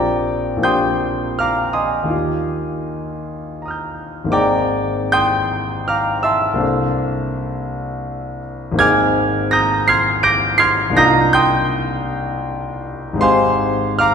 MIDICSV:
0, 0, Header, 1, 2, 480
1, 0, Start_track
1, 0, Tempo, 847458
1, 364, Tempo, 738916
1, 1330, Time_signature, 3, 2, 24, 8
1, 2764, Tempo, 802139
1, 3244, Tempo, 748130
1, 3724, Tempo, 725514
1, 7084, Tempo, 750939
1, 8524, Tempo, 793651
1, 9083, End_track
2, 0, Start_track
2, 0, Title_t, "Grand piano"
2, 0, Program_c, 0, 0
2, 0, Note_on_c, 0, 34, 50
2, 0, Note_on_c, 0, 58, 41
2, 0, Note_on_c, 0, 60, 40
2, 0, Note_on_c, 0, 65, 38
2, 0, Note_on_c, 0, 67, 41
2, 0, Note_on_c, 0, 74, 61
2, 0, Note_on_c, 0, 79, 64
2, 0, Note_on_c, 0, 82, 64
2, 0, Note_on_c, 0, 86, 81
2, 15, Control_c, 0, 64, 127
2, 311, Note_off_c, 0, 34, 0
2, 319, Note_off_c, 0, 58, 0
2, 320, Note_on_c, 0, 34, 51
2, 327, Note_off_c, 0, 60, 0
2, 328, Note_on_c, 0, 58, 44
2, 335, Note_on_c, 0, 60, 40
2, 337, Note_off_c, 0, 65, 0
2, 338, Note_off_c, 0, 74, 0
2, 338, Note_off_c, 0, 79, 0
2, 339, Note_off_c, 0, 82, 0
2, 344, Note_off_c, 0, 67, 0
2, 348, Note_on_c, 0, 65, 42
2, 357, Note_off_c, 0, 86, 0
2, 359, Note_on_c, 0, 91, 92
2, 360, Note_on_c, 0, 67, 39
2, 363, Note_on_c, 0, 87, 67
2, 364, Note_on_c, 0, 79, 68
2, 365, Note_on_c, 0, 84, 71
2, 826, Note_off_c, 0, 79, 0
2, 826, Note_off_c, 0, 87, 0
2, 827, Note_off_c, 0, 84, 0
2, 847, Note_on_c, 0, 89, 86
2, 849, Note_off_c, 0, 91, 0
2, 857, Note_on_c, 0, 77, 66
2, 857, Note_on_c, 0, 82, 67
2, 858, Note_on_c, 0, 86, 67
2, 1072, Note_on_c, 0, 87, 78
2, 1074, Note_off_c, 0, 77, 0
2, 1075, Note_off_c, 0, 82, 0
2, 1075, Note_off_c, 0, 86, 0
2, 1075, Note_on_c, 0, 84, 56
2, 1076, Note_on_c, 0, 80, 57
2, 1080, Note_on_c, 0, 75, 56
2, 1086, Note_off_c, 0, 89, 0
2, 1267, Note_on_c, 0, 39, 48
2, 1273, Note_off_c, 0, 58, 0
2, 1279, Note_off_c, 0, 34, 0
2, 1282, Note_on_c, 0, 58, 41
2, 1288, Note_off_c, 0, 60, 0
2, 1294, Note_on_c, 0, 63, 41
2, 1295, Note_off_c, 0, 65, 0
2, 1302, Note_off_c, 0, 67, 0
2, 1309, Note_on_c, 0, 65, 44
2, 1317, Note_on_c, 0, 67, 40
2, 1342, Control_c, 0, 64, 0
2, 1436, Control_c, 0, 64, 127
2, 2299, Note_on_c, 0, 82, 37
2, 2311, Note_off_c, 0, 87, 0
2, 2321, Note_on_c, 0, 87, 38
2, 2337, Note_on_c, 0, 89, 38
2, 2353, Note_on_c, 0, 91, 37
2, 2493, Note_off_c, 0, 84, 0
2, 2494, Note_off_c, 0, 80, 0
2, 2496, Note_off_c, 0, 75, 0
2, 2703, Note_on_c, 0, 32, 51
2, 2706, Note_off_c, 0, 58, 0
2, 2707, Note_off_c, 0, 39, 0
2, 2716, Note_on_c, 0, 58, 44
2, 2720, Note_off_c, 0, 63, 0
2, 2728, Note_off_c, 0, 65, 0
2, 2728, Note_on_c, 0, 60, 44
2, 2732, Note_off_c, 0, 67, 0
2, 2740, Note_on_c, 0, 63, 43
2, 2741, Note_off_c, 0, 82, 0
2, 2751, Note_on_c, 0, 86, 88
2, 2752, Note_off_c, 0, 87, 0
2, 2752, Note_on_c, 0, 68, 46
2, 2757, Note_on_c, 0, 79, 70
2, 2760, Note_off_c, 0, 89, 0
2, 2760, Note_on_c, 0, 74, 67
2, 2760, Note_on_c, 0, 82, 62
2, 2768, Note_off_c, 0, 91, 0
2, 2775, Control_c, 0, 64, 0
2, 2882, Control_c, 0, 64, 127
2, 3217, Note_off_c, 0, 79, 0
2, 3219, Note_off_c, 0, 74, 0
2, 3219, Note_off_c, 0, 82, 0
2, 3233, Note_on_c, 0, 91, 109
2, 3239, Note_off_c, 0, 86, 0
2, 3239, Note_on_c, 0, 79, 76
2, 3239, Note_on_c, 0, 87, 74
2, 3240, Note_on_c, 0, 84, 76
2, 3696, Note_off_c, 0, 79, 0
2, 3696, Note_off_c, 0, 84, 0
2, 3696, Note_off_c, 0, 87, 0
2, 3717, Note_on_c, 0, 89, 82
2, 3718, Note_off_c, 0, 91, 0
2, 3723, Note_on_c, 0, 82, 65
2, 3725, Note_on_c, 0, 86, 61
2, 3729, Note_on_c, 0, 77, 62
2, 3948, Note_off_c, 0, 82, 0
2, 3949, Note_off_c, 0, 86, 0
2, 3949, Note_on_c, 0, 88, 82
2, 3952, Note_off_c, 0, 77, 0
2, 3956, Note_on_c, 0, 76, 62
2, 3957, Note_on_c, 0, 81, 64
2, 3961, Note_on_c, 0, 84, 66
2, 3962, Note_off_c, 0, 89, 0
2, 4147, Note_off_c, 0, 58, 0
2, 4150, Note_off_c, 0, 32, 0
2, 4151, Note_on_c, 0, 36, 54
2, 4157, Note_on_c, 0, 58, 48
2, 4161, Note_off_c, 0, 60, 0
2, 4168, Note_off_c, 0, 63, 0
2, 4171, Note_on_c, 0, 60, 45
2, 4174, Note_off_c, 0, 68, 0
2, 4183, Note_on_c, 0, 62, 46
2, 4195, Note_on_c, 0, 69, 44
2, 4218, Control_c, 0, 64, 0
2, 4332, Control_c, 0, 64, 127
2, 5384, Note_off_c, 0, 76, 0
2, 5384, Note_off_c, 0, 81, 0
2, 5386, Note_off_c, 0, 84, 0
2, 5407, Note_off_c, 0, 88, 0
2, 5593, Note_off_c, 0, 36, 0
2, 5595, Note_on_c, 0, 32, 60
2, 5596, Note_off_c, 0, 58, 0
2, 5603, Note_off_c, 0, 60, 0
2, 5608, Note_on_c, 0, 58, 48
2, 5609, Note_off_c, 0, 62, 0
2, 5615, Note_off_c, 0, 69, 0
2, 5620, Note_on_c, 0, 60, 47
2, 5636, Note_on_c, 0, 63, 47
2, 5640, Note_on_c, 0, 68, 49
2, 5642, Note_on_c, 0, 92, 116
2, 5651, Note_on_c, 0, 89, 81
2, 5652, Note_on_c, 0, 80, 82
2, 5652, Note_on_c, 0, 86, 86
2, 5658, Control_c, 0, 64, 0
2, 5757, Control_c, 0, 64, 127
2, 6100, Note_off_c, 0, 80, 0
2, 6100, Note_off_c, 0, 86, 0
2, 6100, Note_off_c, 0, 89, 0
2, 6121, Note_on_c, 0, 94, 103
2, 6122, Note_off_c, 0, 92, 0
2, 6132, Note_on_c, 0, 82, 88
2, 6132, Note_on_c, 0, 87, 80
2, 6133, Note_on_c, 0, 91, 81
2, 6349, Note_off_c, 0, 82, 0
2, 6349, Note_off_c, 0, 87, 0
2, 6350, Note_off_c, 0, 91, 0
2, 6360, Note_off_c, 0, 94, 0
2, 6363, Note_on_c, 0, 96, 107
2, 6370, Note_on_c, 0, 89, 82
2, 6372, Note_on_c, 0, 84, 76
2, 6373, Note_on_c, 0, 92, 81
2, 6586, Note_off_c, 0, 89, 0
2, 6587, Note_off_c, 0, 84, 0
2, 6587, Note_off_c, 0, 92, 0
2, 6597, Note_on_c, 0, 98, 112
2, 6598, Note_off_c, 0, 96, 0
2, 6600, Note_on_c, 0, 91, 82
2, 6602, Note_on_c, 0, 86, 85
2, 6602, Note_on_c, 0, 94, 88
2, 6822, Note_off_c, 0, 91, 0
2, 6823, Note_off_c, 0, 86, 0
2, 6823, Note_off_c, 0, 94, 0
2, 6828, Note_on_c, 0, 96, 112
2, 6837, Note_off_c, 0, 98, 0
2, 6837, Note_on_c, 0, 92, 80
2, 6840, Note_on_c, 0, 89, 81
2, 6841, Note_on_c, 0, 84, 86
2, 7031, Note_off_c, 0, 32, 0
2, 7037, Note_on_c, 0, 36, 64
2, 7038, Note_off_c, 0, 58, 0
2, 7044, Note_off_c, 0, 60, 0
2, 7049, Note_on_c, 0, 58, 53
2, 7051, Note_off_c, 0, 63, 0
2, 7054, Note_off_c, 0, 68, 0
2, 7062, Note_on_c, 0, 62, 51
2, 7066, Note_off_c, 0, 92, 0
2, 7068, Note_off_c, 0, 84, 0
2, 7068, Note_off_c, 0, 89, 0
2, 7070, Note_on_c, 0, 63, 53
2, 7079, Note_off_c, 0, 96, 0
2, 7084, Note_on_c, 0, 94, 116
2, 7086, Note_on_c, 0, 65, 52
2, 7089, Note_on_c, 0, 91, 85
2, 7091, Note_on_c, 0, 82, 90
2, 7092, Note_on_c, 0, 87, 85
2, 7095, Control_c, 0, 64, 0
2, 7217, Control_c, 0, 64, 127
2, 7307, Note_off_c, 0, 91, 0
2, 7313, Note_off_c, 0, 82, 0
2, 7313, Note_off_c, 0, 87, 0
2, 7317, Note_on_c, 0, 91, 110
2, 7325, Note_on_c, 0, 79, 83
2, 7326, Note_off_c, 0, 94, 0
2, 7326, Note_on_c, 0, 84, 85
2, 7327, Note_on_c, 0, 87, 85
2, 8470, Note_on_c, 0, 32, 58
2, 8477, Note_off_c, 0, 36, 0
2, 8482, Note_off_c, 0, 58, 0
2, 8484, Note_on_c, 0, 56, 52
2, 8488, Note_off_c, 0, 62, 0
2, 8492, Note_off_c, 0, 63, 0
2, 8496, Note_on_c, 0, 60, 47
2, 8498, Note_off_c, 0, 79, 0
2, 8499, Note_off_c, 0, 84, 0
2, 8500, Note_off_c, 0, 65, 0
2, 8500, Note_off_c, 0, 87, 0
2, 8504, Note_on_c, 0, 63, 48
2, 8517, Note_on_c, 0, 84, 107
2, 8518, Note_on_c, 0, 67, 49
2, 8520, Note_off_c, 0, 91, 0
2, 8524, Note_on_c, 0, 72, 81
2, 8525, Note_on_c, 0, 77, 78
2, 8527, Note_on_c, 0, 80, 79
2, 8536, Control_c, 0, 64, 0
2, 8633, Control_c, 0, 64, 127
2, 8981, Note_off_c, 0, 72, 0
2, 8982, Note_off_c, 0, 77, 0
2, 8983, Note_off_c, 0, 80, 0
2, 8988, Note_on_c, 0, 89, 104
2, 8995, Note_on_c, 0, 86, 76
2, 8996, Note_on_c, 0, 77, 80
2, 9001, Note_on_c, 0, 82, 86
2, 9002, Note_off_c, 0, 84, 0
2, 9083, Note_off_c, 0, 32, 0
2, 9083, Note_off_c, 0, 56, 0
2, 9083, Note_off_c, 0, 60, 0
2, 9083, Note_off_c, 0, 63, 0
2, 9083, Note_off_c, 0, 67, 0
2, 9083, Note_off_c, 0, 77, 0
2, 9083, Note_off_c, 0, 82, 0
2, 9083, Note_off_c, 0, 86, 0
2, 9083, Note_off_c, 0, 89, 0
2, 9083, End_track
0, 0, End_of_file